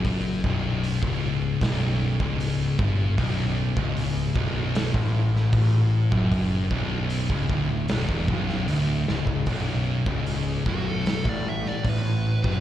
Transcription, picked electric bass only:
X:1
M:4/4
L:1/16
Q:1/4=76
K:Bm
V:1 name="Picked electric bass" clef=bass
F,,,2 B,,,,3 C,,,3 B,,,,3 C,,,3 G,,,2 | B,,,,3 C,,,3 B,,,,3 A,,,3 A,,,3 F,,,- | F,,,2 B,,,,3 C,,, D,,,2 B,,,, E,,, B,,,,2 D,,,2 C,,,2 | B,,,,3 C,,,3 B,,,,3 A,,,3 A,,,3 F,,, |]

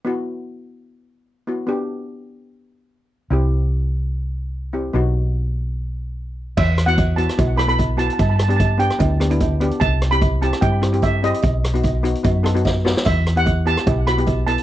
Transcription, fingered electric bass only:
X:1
M:4/4
L:1/8
Q:1/4=148
K:Em
V:1 name="Fingered electric bass" clef=bass
z8 | z8 | C,,8 | B,,,8 |
E,,4 B,,,4 | G,,4 D,,4 | C,,4 G,,4 | B,,,4 F,,4 |
E,,4 B,,,4 |]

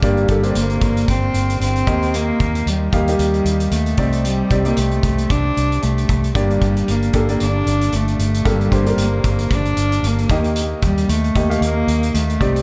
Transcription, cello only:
X:1
M:4/4
L:1/16
Q:"Swing 16ths" 1/4=114
K:Gm
V:1 name="Cello"
G,4 B,4 C4 C4 | B,4 G,2 G,6 A,4 | G,3 B, A,4 D4 A,4 | G,4 B,4 D4 A,4 |
G,4 B,4 D4 B,3 z | z2 G,2 A,4 B,4 A,4 |]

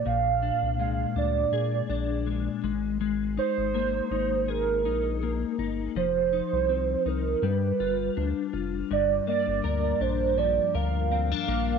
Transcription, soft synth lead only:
X:1
M:4/4
L:1/8
Q:"Swing 16ths" 1/4=81
K:Gphr
V:1 name="Soft synth lead"
f2 f d4 z | z c3 B3 z | c3 B =B3 z | d d2 c d f f2 |]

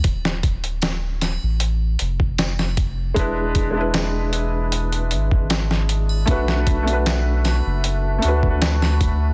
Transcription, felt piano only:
X:1
M:4/4
L:1/16
Q:1/4=77
K:Ddor
V:1 name="Felt piano"
z16 | [^G,DEB]3 [G,DEB]12- [G,DEB] | [A,D^FB]3 [A,DFB]6- [A,DFB] [A,DFB]6 |]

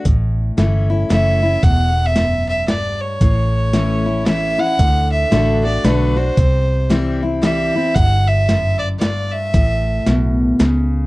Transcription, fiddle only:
X:1
M:3/4
L:1/16
Q:"Swing" 1/4=114
K:D
V:1 name="Fiddle"
z8 e4 | f3 e3 e2 d2 c2- | c8 e2 f2- | f2 e4 d2 B2 =c2- |
=c4 z4 e4 | f2 e4 d2 d2 e2- | e4 z8 |]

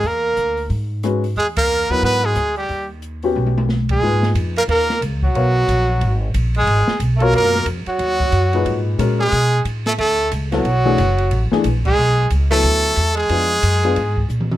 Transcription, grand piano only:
X:1
M:4/4
L:1/8
Q:"Swing" 1/4=181
K:Ebphr
V:1 name="Grand piano"
z6 [A,DGc] z | z3 [G,CFB]3 z2 | z3 [=B,D^F=G]3 z2 | [K:G#dor] [A,,DGB]4- [A,,DGB] z3 |
[B,Ace]4- [B,Ace] z3 | z3 [B,,EAc]3 z2 | z3 [A,,DGB]3 [G,CFA]2 | z6 z [F,B,=E=A] |
z [=E,=A,=DG] z3 [E,A,DG] z2 | z3 [F,B,=E=A]3 z2 | [B,=DEG] z2 [B,DEG] z4 |]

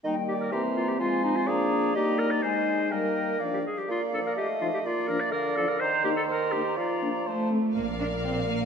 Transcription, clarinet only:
X:1
M:2/4
L:1/16
Q:1/4=125
K:Eb
V:1 name="Clarinet"
E2 G B G2 F G | F2 E F A4 | G2 B d c4 | B4 z G A G |
[K:Bb] F2 A B G2 F G | F2 B d B2 A B | c2 G A B2 G2 | F4 z4 |
z8 |]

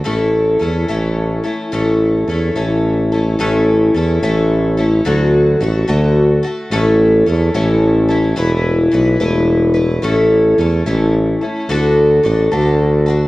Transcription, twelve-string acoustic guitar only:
X:1
M:6/8
L:1/8
Q:3/8=72
K:A
V:1 name="Twelve-string acoustic guitar"
[A,,E,A,CEA]2 [A,CEA] [A,,E,A,CEA]2 [A,CEA] | [A,,E,A,CEA]2 [A,CEA] [A,,E,A,CEA]2 [A,CEA] | [A,,E,A,CEA]2 [A,CEA] [A,,E,A,CEA]2 [A,CEA] | [D,F,A,FA]2 [F,A,FA] [D,F,A,FA]2 [A,FA] |
[A,,E,A,CEA]2 [A,CEA] [A,,E,A,CEA]2 [A,CEA] | [E,A,EB]2 [E,A,EB] [E,A,EB]2 [A,EB] | [A,,E,A,CEA]2 [A,CEA] [A,,E,A,CEA]2 [A,CEA] | [D,A,DFA]2 [A,DFA] [D,A,DFA]2 [DFA] |]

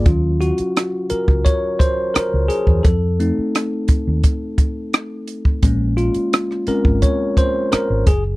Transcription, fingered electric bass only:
X:1
M:4/4
L:1/16
Q:1/4=86
K:Ebdor
V:1 name="Fingered electric bass" clef=bass
E,,3 z4 D,, z4 z D,, z _F,, | F,,3 z4 E,, z8 | B,,,3 z4 A,,, z4 z A,,, G,,,2 |]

